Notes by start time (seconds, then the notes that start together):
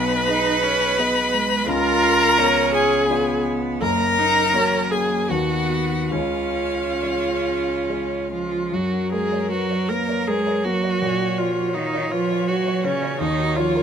Already playing: B1 B2 B3 B4 B5
0.28 B3 D#4 G#4 D#5
0.63 C#4
0.98 B3 G#4 D#5
1.33 G#3
1.66 C#2 C#3 F4 A#4 A#5
2.37 B3 C#4 F4 C#5
2.74 G#4 G#5
3.09 B3 F4 C#5
3.81 F#1 F#2 A#3 A#4 A#5
4.18 D#4
4.53 A#3 C#4 F#4 C#5
4.91 A#3 G#4 G#5
5.29 D#2 D#3 B3 F#4 B4 F#5
6.11 C#2 C#3 C#4 F4 F5
7.02 G#3 G#4 C#5
7.89 G#3 G#4 C#5
8.32 F3 F4
8.72 F#2 F#3 F#4 A#4
8.92 F#4
9.12 G#3 G#4 A#4
9.32 C#5
9.51 F#3 F#4 B4
9.71 C#5
9.88 A#3 A#4 B4
10.09 C#5
10.27 G#3 G#4 A#4
10.46 C#5
10.64 F#3 A#3 F#4
10.83 C#5
11.02 A#2 C#5
11.21 F#4
11.38 F3 F4 C#5
11.57 F#4
11.74 D#3 D#4 F4
11.94 C#5
12.12 F3 F4 B4
12.31 C#5
12.48 F#3 F#4
12.67 C#5
12.84 C#3 C#4
13.03 C#5
13.19 D#2 D#3 D#4
13.39 F#4
13.56 F3 F4 C#5
13.76 A#4